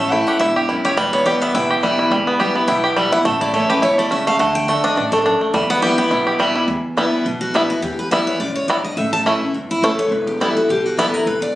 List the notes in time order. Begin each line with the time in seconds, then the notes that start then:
Already playing: A1 A2 C#4 E4 E5
0.00 A3
0.11 E3 A3 C#4 E4 G5
0.27 G4 F#5
0.39 E1 G2 E4 E5
0.56 G4
0.69 F#2 E4
0.85 G4 C#5
0.97 E1 E2 G3 B4
1.13 B3 C#5
1.25 E3 G3 B3 E4 G4 D5
1.41 B3 E5
1.54 B1 B2 E4 G5
1.71 G4
1.83 E3 G3 B3 E4
1.99 E4
2.11 E1 E2 G3
2.27 B3
2.40 E3 G3 B3 E4 G4
2.55 B3 E4
2.68 B1 B2 E4 G5
2.84 G4
2.96 E3 G3 B3 E4
3.12 B3 E4 F#5
3.25 A1 A2 A3 E5
3.41 E4 D5
3.54 E3 A3 C#4 E4 C#5
3.69 C#4 E4 G4 B4
3.82 E1 B2 E4 C#5
3.98 A3 D5
4.11 C#3 C#4 E5
4.27 A3 F5
4.39 D2 D3 A3 F#5
4.55 G5
4.68 D3 A3 D4 F#4 E5
4.84 D4 D#5
4.96 A1 G2 D4 D5
5.12 A3 A4
5.26 F#2 D4
5.41 A3
5.54 E2 G3 E5
5.70 B3 F#5
5.82 E3 G3 B3 E4 G4 G5
5.98 B3 E4 G5
6.10 B1 B2 E4
6.27 G4
6.39 E3 G3 B3 E4
6.55 B3 E4
6.68 E2
6.97 E3 G3 B3 E4
7.25 B1 B2
7.41 F#4
7.54 E3 G3 B3 D4 E4
7.70 B3 E4 F#4
7.82 E2 G4
7.99 B4
8.11 E3 G3 B3 E4 E5
8.27 C#5
8.40 B1 F#2 D5
8.56 C#5
8.68 G2 G3 B3 E4 D5
8.84 D#5
8.97 A1 A2 E5
9.13 A5
9.26 E3 A3 C#4 E4
9.41 C#4 E4
9.54 G1 E2
9.71 E4
9.82 F#1 E3 A3 C#4 E4 A4
9.99 C#5
10.11 E1 E2 B4
10.27 G4
10.40 E3 G3 B3 E4 A4
10.56 B3 E4 F#4
10.68 B1 B2 G4
10.86 F#4
10.97 E3 G3 B3 E4 A4
11.14 B3 E4 A#4
11.26 E1 E2 B4
11.42 D5